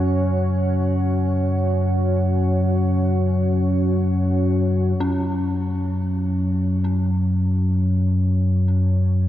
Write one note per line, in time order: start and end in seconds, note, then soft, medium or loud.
0.00 4.99 F#2 medium
0.00 4.99 F#3 medium
0.00 4.97 C#4 medium
0.00 4.98 F#4 medium
0.00 4.97 C#5 medium
4.98 9.29 F#2 medium
4.98 9.29 F#3 medium
4.98 9.29 C#4 medium
5.37 9.29 F#4 medium
5.97 9.29 C#5 medium